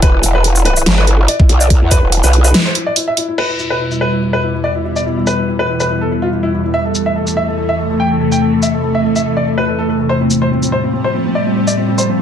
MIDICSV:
0, 0, Header, 1, 5, 480
1, 0, Start_track
1, 0, Tempo, 419580
1, 29, Time_signature, 4, 2, 24, 8
1, 13979, End_track
2, 0, Start_track
2, 0, Title_t, "Grand piano"
2, 0, Program_c, 0, 0
2, 29, Note_on_c, 0, 71, 100
2, 115, Note_off_c, 0, 71, 0
2, 157, Note_on_c, 0, 64, 70
2, 232, Note_off_c, 0, 64, 0
2, 269, Note_on_c, 0, 64, 66
2, 355, Note_off_c, 0, 64, 0
2, 398, Note_on_c, 0, 71, 98
2, 472, Note_off_c, 0, 71, 0
2, 510, Note_on_c, 0, 64, 67
2, 595, Note_off_c, 0, 64, 0
2, 638, Note_on_c, 0, 64, 66
2, 712, Note_off_c, 0, 64, 0
2, 750, Note_on_c, 0, 71, 101
2, 835, Note_off_c, 0, 71, 0
2, 880, Note_on_c, 0, 64, 65
2, 953, Note_off_c, 0, 64, 0
2, 1121, Note_on_c, 0, 71, 95
2, 1194, Note_off_c, 0, 71, 0
2, 1232, Note_on_c, 0, 64, 70
2, 1316, Note_off_c, 0, 64, 0
2, 1360, Note_on_c, 0, 64, 67
2, 1433, Note_off_c, 0, 64, 0
2, 1472, Note_on_c, 0, 74, 98
2, 1556, Note_off_c, 0, 74, 0
2, 1599, Note_on_c, 0, 64, 63
2, 1673, Note_off_c, 0, 64, 0
2, 1711, Note_on_c, 0, 64, 65
2, 1796, Note_off_c, 0, 64, 0
2, 1839, Note_on_c, 0, 74, 94
2, 1913, Note_off_c, 0, 74, 0
2, 1952, Note_on_c, 0, 64, 69
2, 2036, Note_off_c, 0, 64, 0
2, 2079, Note_on_c, 0, 64, 68
2, 2153, Note_off_c, 0, 64, 0
2, 2190, Note_on_c, 0, 71, 99
2, 2275, Note_off_c, 0, 71, 0
2, 2319, Note_on_c, 0, 64, 67
2, 2393, Note_off_c, 0, 64, 0
2, 2430, Note_on_c, 0, 64, 65
2, 2516, Note_off_c, 0, 64, 0
2, 2558, Note_on_c, 0, 71, 89
2, 2632, Note_off_c, 0, 71, 0
2, 2671, Note_on_c, 0, 64, 65
2, 2756, Note_off_c, 0, 64, 0
2, 2797, Note_on_c, 0, 71, 89
2, 2872, Note_off_c, 0, 71, 0
2, 2909, Note_on_c, 0, 64, 66
2, 2995, Note_off_c, 0, 64, 0
2, 3036, Note_on_c, 0, 72, 90
2, 3111, Note_off_c, 0, 72, 0
2, 3149, Note_on_c, 0, 64, 66
2, 3235, Note_off_c, 0, 64, 0
2, 3277, Note_on_c, 0, 74, 94
2, 3352, Note_off_c, 0, 74, 0
2, 3391, Note_on_c, 0, 64, 68
2, 3476, Note_off_c, 0, 64, 0
2, 3518, Note_on_c, 0, 76, 92
2, 3592, Note_off_c, 0, 76, 0
2, 3629, Note_on_c, 0, 64, 69
2, 3715, Note_off_c, 0, 64, 0
2, 3757, Note_on_c, 0, 64, 64
2, 3832, Note_off_c, 0, 64, 0
2, 3868, Note_on_c, 0, 71, 93
2, 3954, Note_off_c, 0, 71, 0
2, 3998, Note_on_c, 0, 64, 61
2, 4072, Note_off_c, 0, 64, 0
2, 4109, Note_on_c, 0, 64, 62
2, 4195, Note_off_c, 0, 64, 0
2, 4237, Note_on_c, 0, 71, 86
2, 4312, Note_off_c, 0, 71, 0
2, 4349, Note_on_c, 0, 64, 59
2, 4435, Note_off_c, 0, 64, 0
2, 4478, Note_on_c, 0, 64, 64
2, 4552, Note_off_c, 0, 64, 0
2, 4588, Note_on_c, 0, 71, 89
2, 4674, Note_off_c, 0, 71, 0
2, 4716, Note_on_c, 0, 64, 59
2, 4791, Note_off_c, 0, 64, 0
2, 4828, Note_on_c, 0, 64, 60
2, 4915, Note_off_c, 0, 64, 0
2, 4956, Note_on_c, 0, 71, 88
2, 5031, Note_off_c, 0, 71, 0
2, 5068, Note_on_c, 0, 64, 64
2, 5155, Note_off_c, 0, 64, 0
2, 5197, Note_on_c, 0, 64, 59
2, 5272, Note_off_c, 0, 64, 0
2, 5306, Note_on_c, 0, 74, 89
2, 5393, Note_off_c, 0, 74, 0
2, 5436, Note_on_c, 0, 64, 62
2, 5511, Note_off_c, 0, 64, 0
2, 5548, Note_on_c, 0, 64, 63
2, 5635, Note_off_c, 0, 64, 0
2, 5676, Note_on_c, 0, 74, 84
2, 5751, Note_off_c, 0, 74, 0
2, 5788, Note_on_c, 0, 64, 61
2, 5874, Note_off_c, 0, 64, 0
2, 5918, Note_on_c, 0, 64, 64
2, 5992, Note_off_c, 0, 64, 0
2, 6029, Note_on_c, 0, 71, 88
2, 6115, Note_off_c, 0, 71, 0
2, 6157, Note_on_c, 0, 64, 60
2, 6232, Note_off_c, 0, 64, 0
2, 6269, Note_on_c, 0, 64, 59
2, 6355, Note_off_c, 0, 64, 0
2, 6397, Note_on_c, 0, 71, 88
2, 6472, Note_off_c, 0, 71, 0
2, 6509, Note_on_c, 0, 64, 59
2, 6595, Note_off_c, 0, 64, 0
2, 6637, Note_on_c, 0, 71, 84
2, 6712, Note_off_c, 0, 71, 0
2, 6749, Note_on_c, 0, 64, 60
2, 6835, Note_off_c, 0, 64, 0
2, 6878, Note_on_c, 0, 69, 85
2, 6952, Note_off_c, 0, 69, 0
2, 6990, Note_on_c, 0, 64, 61
2, 7075, Note_off_c, 0, 64, 0
2, 7118, Note_on_c, 0, 65, 89
2, 7192, Note_off_c, 0, 65, 0
2, 7229, Note_on_c, 0, 64, 61
2, 7315, Note_off_c, 0, 64, 0
2, 7356, Note_on_c, 0, 64, 88
2, 7431, Note_off_c, 0, 64, 0
2, 7468, Note_on_c, 0, 64, 61
2, 7554, Note_off_c, 0, 64, 0
2, 7596, Note_on_c, 0, 64, 61
2, 7671, Note_off_c, 0, 64, 0
2, 7708, Note_on_c, 0, 76, 96
2, 7794, Note_off_c, 0, 76, 0
2, 7836, Note_on_c, 0, 69, 62
2, 7911, Note_off_c, 0, 69, 0
2, 7949, Note_on_c, 0, 69, 60
2, 8035, Note_off_c, 0, 69, 0
2, 8077, Note_on_c, 0, 76, 85
2, 8152, Note_off_c, 0, 76, 0
2, 8188, Note_on_c, 0, 69, 63
2, 8274, Note_off_c, 0, 69, 0
2, 8316, Note_on_c, 0, 69, 61
2, 8391, Note_off_c, 0, 69, 0
2, 8428, Note_on_c, 0, 76, 88
2, 8514, Note_off_c, 0, 76, 0
2, 8557, Note_on_c, 0, 69, 62
2, 8632, Note_off_c, 0, 69, 0
2, 8668, Note_on_c, 0, 69, 61
2, 8754, Note_off_c, 0, 69, 0
2, 8796, Note_on_c, 0, 76, 87
2, 8871, Note_off_c, 0, 76, 0
2, 8909, Note_on_c, 0, 69, 60
2, 8995, Note_off_c, 0, 69, 0
2, 9038, Note_on_c, 0, 69, 62
2, 9112, Note_off_c, 0, 69, 0
2, 9149, Note_on_c, 0, 79, 89
2, 9235, Note_off_c, 0, 79, 0
2, 9279, Note_on_c, 0, 69, 61
2, 9353, Note_off_c, 0, 69, 0
2, 9390, Note_on_c, 0, 69, 62
2, 9476, Note_off_c, 0, 69, 0
2, 9517, Note_on_c, 0, 79, 90
2, 9592, Note_off_c, 0, 79, 0
2, 9629, Note_on_c, 0, 69, 64
2, 9715, Note_off_c, 0, 69, 0
2, 9757, Note_on_c, 0, 69, 62
2, 9832, Note_off_c, 0, 69, 0
2, 9868, Note_on_c, 0, 76, 89
2, 9954, Note_off_c, 0, 76, 0
2, 9996, Note_on_c, 0, 69, 62
2, 10071, Note_off_c, 0, 69, 0
2, 10108, Note_on_c, 0, 69, 59
2, 10194, Note_off_c, 0, 69, 0
2, 10235, Note_on_c, 0, 76, 89
2, 10311, Note_off_c, 0, 76, 0
2, 10347, Note_on_c, 0, 69, 63
2, 10434, Note_off_c, 0, 69, 0
2, 10476, Note_on_c, 0, 76, 88
2, 10551, Note_off_c, 0, 76, 0
2, 10588, Note_on_c, 0, 69, 62
2, 10675, Note_off_c, 0, 69, 0
2, 10716, Note_on_c, 0, 74, 86
2, 10791, Note_off_c, 0, 74, 0
2, 10828, Note_on_c, 0, 69, 62
2, 10914, Note_off_c, 0, 69, 0
2, 10955, Note_on_c, 0, 71, 88
2, 11031, Note_off_c, 0, 71, 0
2, 11067, Note_on_c, 0, 69, 63
2, 11154, Note_off_c, 0, 69, 0
2, 11195, Note_on_c, 0, 69, 89
2, 11271, Note_off_c, 0, 69, 0
2, 11308, Note_on_c, 0, 69, 62
2, 11394, Note_off_c, 0, 69, 0
2, 11437, Note_on_c, 0, 69, 61
2, 11512, Note_off_c, 0, 69, 0
2, 11547, Note_on_c, 0, 72, 97
2, 11634, Note_off_c, 0, 72, 0
2, 11677, Note_on_c, 0, 60, 63
2, 11752, Note_off_c, 0, 60, 0
2, 11788, Note_on_c, 0, 60, 63
2, 11874, Note_off_c, 0, 60, 0
2, 11916, Note_on_c, 0, 72, 91
2, 11991, Note_off_c, 0, 72, 0
2, 12028, Note_on_c, 0, 60, 62
2, 12115, Note_off_c, 0, 60, 0
2, 12155, Note_on_c, 0, 60, 63
2, 12231, Note_off_c, 0, 60, 0
2, 12266, Note_on_c, 0, 72, 88
2, 12353, Note_off_c, 0, 72, 0
2, 12395, Note_on_c, 0, 60, 59
2, 12471, Note_off_c, 0, 60, 0
2, 12507, Note_on_c, 0, 60, 58
2, 12594, Note_off_c, 0, 60, 0
2, 12634, Note_on_c, 0, 72, 91
2, 12710, Note_off_c, 0, 72, 0
2, 12746, Note_on_c, 0, 60, 65
2, 12833, Note_off_c, 0, 60, 0
2, 12874, Note_on_c, 0, 60, 63
2, 12950, Note_off_c, 0, 60, 0
2, 12986, Note_on_c, 0, 74, 91
2, 13073, Note_off_c, 0, 74, 0
2, 13115, Note_on_c, 0, 60, 61
2, 13191, Note_off_c, 0, 60, 0
2, 13227, Note_on_c, 0, 60, 63
2, 13314, Note_off_c, 0, 60, 0
2, 13355, Note_on_c, 0, 74, 89
2, 13431, Note_off_c, 0, 74, 0
2, 13468, Note_on_c, 0, 60, 63
2, 13554, Note_off_c, 0, 60, 0
2, 13594, Note_on_c, 0, 60, 63
2, 13670, Note_off_c, 0, 60, 0
2, 13705, Note_on_c, 0, 72, 91
2, 13793, Note_off_c, 0, 72, 0
2, 13835, Note_on_c, 0, 60, 62
2, 13911, Note_off_c, 0, 60, 0
2, 13979, End_track
3, 0, Start_track
3, 0, Title_t, "Ambient pad"
3, 0, Program_c, 1, 92
3, 3868, Note_on_c, 1, 47, 70
3, 3868, Note_on_c, 1, 55, 85
3, 3869, Note_on_c, 1, 40, 81
3, 7670, Note_off_c, 1, 47, 0
3, 7670, Note_off_c, 1, 55, 0
3, 7708, Note_on_c, 1, 48, 70
3, 7708, Note_on_c, 1, 52, 69
3, 7709, Note_on_c, 1, 57, 88
3, 11503, Note_off_c, 1, 40, 0
3, 11510, Note_off_c, 1, 48, 0
3, 11510, Note_off_c, 1, 52, 0
3, 11510, Note_off_c, 1, 57, 0
3, 11549, Note_on_c, 1, 45, 77
3, 11549, Note_on_c, 1, 53, 74
3, 11550, Note_on_c, 1, 55, 83
3, 13979, Note_off_c, 1, 45, 0
3, 13979, Note_off_c, 1, 53, 0
3, 13979, Note_off_c, 1, 55, 0
3, 13979, End_track
4, 0, Start_track
4, 0, Title_t, "Wobble bass"
4, 0, Program_c, 2, 39
4, 28, Note_on_c, 2, 28, 99
4, 250, Note_off_c, 2, 28, 0
4, 269, Note_on_c, 2, 28, 103
4, 971, Note_off_c, 2, 28, 0
4, 989, Note_on_c, 2, 31, 96
4, 1451, Note_off_c, 2, 31, 0
4, 1708, Note_on_c, 2, 35, 96
4, 2056, Note_off_c, 2, 35, 0
4, 2077, Note_on_c, 2, 40, 99
4, 2296, Note_off_c, 2, 40, 0
4, 2317, Note_on_c, 2, 28, 96
4, 2536, Note_off_c, 2, 28, 0
4, 2557, Note_on_c, 2, 35, 92
4, 2891, Note_off_c, 2, 35, 0
4, 13979, End_track
5, 0, Start_track
5, 0, Title_t, "Drums"
5, 28, Note_on_c, 9, 36, 120
5, 28, Note_on_c, 9, 42, 83
5, 142, Note_off_c, 9, 42, 0
5, 143, Note_off_c, 9, 36, 0
5, 268, Note_on_c, 9, 42, 55
5, 268, Note_on_c, 9, 82, 86
5, 382, Note_off_c, 9, 42, 0
5, 382, Note_off_c, 9, 82, 0
5, 507, Note_on_c, 9, 42, 79
5, 622, Note_off_c, 9, 42, 0
5, 636, Note_on_c, 9, 82, 63
5, 748, Note_on_c, 9, 42, 50
5, 750, Note_off_c, 9, 82, 0
5, 862, Note_off_c, 9, 42, 0
5, 876, Note_on_c, 9, 82, 64
5, 988, Note_on_c, 9, 38, 114
5, 988, Note_on_c, 9, 42, 79
5, 991, Note_off_c, 9, 82, 0
5, 1102, Note_off_c, 9, 38, 0
5, 1102, Note_off_c, 9, 42, 0
5, 1228, Note_on_c, 9, 42, 51
5, 1343, Note_off_c, 9, 42, 0
5, 1468, Note_on_c, 9, 42, 81
5, 1583, Note_off_c, 9, 42, 0
5, 1597, Note_on_c, 9, 36, 103
5, 1709, Note_on_c, 9, 42, 53
5, 1711, Note_off_c, 9, 36, 0
5, 1823, Note_off_c, 9, 42, 0
5, 1837, Note_on_c, 9, 82, 57
5, 1949, Note_on_c, 9, 36, 123
5, 1949, Note_on_c, 9, 42, 82
5, 1952, Note_off_c, 9, 82, 0
5, 2063, Note_off_c, 9, 36, 0
5, 2063, Note_off_c, 9, 42, 0
5, 2188, Note_on_c, 9, 36, 63
5, 2189, Note_on_c, 9, 42, 57
5, 2189, Note_on_c, 9, 82, 83
5, 2303, Note_off_c, 9, 36, 0
5, 2303, Note_off_c, 9, 42, 0
5, 2303, Note_off_c, 9, 82, 0
5, 2429, Note_on_c, 9, 42, 81
5, 2543, Note_off_c, 9, 42, 0
5, 2558, Note_on_c, 9, 82, 62
5, 2669, Note_on_c, 9, 42, 54
5, 2672, Note_off_c, 9, 82, 0
5, 2783, Note_off_c, 9, 42, 0
5, 2797, Note_on_c, 9, 82, 64
5, 2909, Note_on_c, 9, 38, 122
5, 2909, Note_on_c, 9, 42, 80
5, 2911, Note_off_c, 9, 82, 0
5, 3023, Note_off_c, 9, 38, 0
5, 3023, Note_off_c, 9, 42, 0
5, 3148, Note_on_c, 9, 42, 53
5, 3262, Note_off_c, 9, 42, 0
5, 3388, Note_on_c, 9, 42, 85
5, 3502, Note_off_c, 9, 42, 0
5, 3628, Note_on_c, 9, 42, 57
5, 3742, Note_off_c, 9, 42, 0
5, 3868, Note_on_c, 9, 49, 83
5, 3982, Note_off_c, 9, 49, 0
5, 4108, Note_on_c, 9, 82, 78
5, 4222, Note_off_c, 9, 82, 0
5, 4476, Note_on_c, 9, 82, 59
5, 4590, Note_off_c, 9, 82, 0
5, 5676, Note_on_c, 9, 82, 53
5, 5790, Note_off_c, 9, 82, 0
5, 6028, Note_on_c, 9, 82, 77
5, 6142, Note_off_c, 9, 82, 0
5, 6637, Note_on_c, 9, 82, 58
5, 6751, Note_off_c, 9, 82, 0
5, 7948, Note_on_c, 9, 82, 73
5, 8062, Note_off_c, 9, 82, 0
5, 8317, Note_on_c, 9, 82, 57
5, 8431, Note_off_c, 9, 82, 0
5, 9516, Note_on_c, 9, 82, 52
5, 9631, Note_off_c, 9, 82, 0
5, 9868, Note_on_c, 9, 82, 71
5, 9982, Note_off_c, 9, 82, 0
5, 10476, Note_on_c, 9, 82, 55
5, 10591, Note_off_c, 9, 82, 0
5, 11788, Note_on_c, 9, 82, 71
5, 11903, Note_off_c, 9, 82, 0
5, 12157, Note_on_c, 9, 82, 54
5, 12271, Note_off_c, 9, 82, 0
5, 13357, Note_on_c, 9, 82, 50
5, 13471, Note_off_c, 9, 82, 0
5, 13708, Note_on_c, 9, 82, 74
5, 13823, Note_off_c, 9, 82, 0
5, 13979, End_track
0, 0, End_of_file